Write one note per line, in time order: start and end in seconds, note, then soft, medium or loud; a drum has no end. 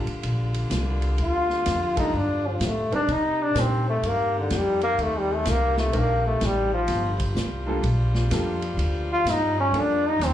0.00 2.91 D3 medium
0.00 6.85 G3 medium
0.00 2.91 A#3 medium
0.00 2.91 F4 medium
0.07 muted upright bass stroke soft
0.07 ride soft
0.23 0.69 A#1 medium
0.23 ride medium
0.54 ride medium
0.70 1.17 C2 loud
0.70 snare medium
0.70 hi-hat pedal medium
0.70 ride medium
1.02 ride soft
1.18 1.65 D2 medium
1.18 ride medium
1.22 1.95 F4 medium
1.50 snare soft
1.66 2.13 F2 loud
1.66 snare medium
1.66 hi-hat pedal medium
1.66 ride medium
1.96 2.11 G3 medium
1.96 2.12 A#3 medium
1.96 2.12 D4 medium
1.96 2.19 D#4 medium
1.96 2.12 F4 medium
1.96 2.12 A4 medium
1.96 kick medium
1.96 ride medium
2.13 2.60 G2 medium
2.17 2.49 D4 medium
2.48 2.68 F3 medium
2.60 2.90 A2 medium
2.60 snare medium
2.60 hi-hat pedal medium
2.60 ride medium
2.66 2.95 A3 medium
2.92 3.07 G3 medium
2.92 3.07 C4 medium
2.92 3.07 D4 medium
2.92 3.14 D4 loud
2.92 3.07 D#4 medium
2.92 3.07 A#4 medium
2.92 muted upright bass stroke soft
2.92 ride soft
3.08 3.54 C3 medium
3.08 6.85 C3 medium
3.08 6.85 A#3 medium
3.08 6.85 D#4 medium
3.08 ride medium
3.12 3.44 D#4 medium
3.43 3.61 D4 loud
3.54 4.02 A#2 medium
3.54 3.83 G3 medium
3.54 3.84 C4 medium
3.54 3.84 D4 medium
3.54 3.84 D#4 medium
3.54 3.84 A#4 medium
3.54 snare medium
3.54 hi-hat pedal medium
3.54 ride medium
3.60 3.89 C4 medium
3.90 4.09 A3 medium
4.03 4.49 G2 medium
4.03 ride medium
4.08 4.37 A#3 medium
4.39 4.58 D3 medium
4.50 4.97 F2 medium
4.50 snare medium
4.50 hi-hat pedal medium
4.50 ride medium
4.56 4.83 G3 medium
4.81 5.04 A#3 loud
4.81 ride soft
4.98 5.44 D#2 medium
4.98 ride medium
5.02 5.21 A3 medium
5.19 5.36 G3 medium
5.34 5.52 A3 medium
5.45 5.92 C2 loud
5.45 snare medium
5.45 hi-hat pedal medium
5.45 ride medium
5.50 5.79 A#3 medium
5.77 5.99 A3 medium
5.77 snare medium
5.93 6.40 A#1 medium
5.93 6.21 G3 medium
5.93 6.21 C4 medium
5.93 6.22 D4 medium
5.93 6.22 D#4 medium
5.93 6.22 A#4 medium
5.93 ride medium
5.98 6.26 A#3 medium
6.27 6.47 A3 medium
6.41 6.87 A1 medium
6.41 snare medium
6.41 hi-hat pedal medium
6.41 ride medium
6.45 6.73 G3 medium
6.74 7.17 F3 medium
6.87 7.35 G1 medium
6.87 10.34 F3 medium
6.87 10.34 G3 medium
6.87 10.34 A#3 medium
6.87 10.34 F4 medium
6.87 snare soft
6.87 ride medium
7.20 kick medium
7.20 ride medium
7.35 7.82 C2 medium
7.35 snare medium
7.35 hi-hat pedal medium
7.66 7.82 G3 medium
7.66 7.82 A#3 medium
7.66 7.82 D4 medium
7.66 7.82 F4 medium
7.66 7.83 A4 medium
7.83 8.30 A#1 medium
7.83 ride medium
8.15 snare medium
8.30 8.77 F2 loud
8.30 8.60 G3 medium
8.30 8.60 A#3 medium
8.30 8.60 D4 medium
8.30 8.60 F4 medium
8.30 8.60 A4 medium
8.30 snare medium
8.30 hi-hat pedal medium
8.30 ride medium
8.62 ride medium
8.77 9.24 D2 medium
8.77 ride medium
9.13 9.33 F4 loud
9.25 9.71 G2 medium
9.25 snare medium
9.25 hi-hat pedal medium
9.25 ride medium
9.31 9.60 D#4 medium
9.60 9.82 C#4 medium
9.72 10.19 F2 medium
9.72 10.02 G3 medium
9.72 10.02 A#3 medium
9.72 10.02 D4 medium
9.72 10.02 F4 medium
9.72 10.02 A4 medium
9.72 ride medium
9.80 10.10 D4 medium
10.09 10.27 D#4 loud
10.19 10.34 D#2 medium
10.19 snare medium
10.19 hi-hat pedal medium
10.19 ride medium
10.25 10.34 C4 medium